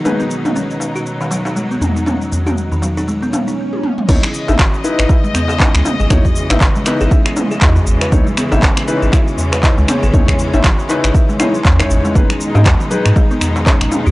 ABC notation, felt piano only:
X:1
M:4/4
L:1/16
Q:"Swing 16ths" 1/4=119
K:C#m
V:1 name="Felt piano"
[DGB]16- | [DGB]16 | [DEc] z2 [DEe] z2 [DEB]2 [DEe] z3 [DEd] z3 | [DEc] z2 [DEe] z2 [DEB]2 [DEe] z3 [DEd] z3 |
[DEc] z2 [DEe] z2 [DEB]2 [DEe] z3 [DEd] z3 | [DEc] z2 [DEe] z2 [DEB]2 [DEe] z [DEd] z2 [DEc]3 | [DGB] z2 [DGd] z2 [DGB]2 [DGd] z3 [DGc] z3 |]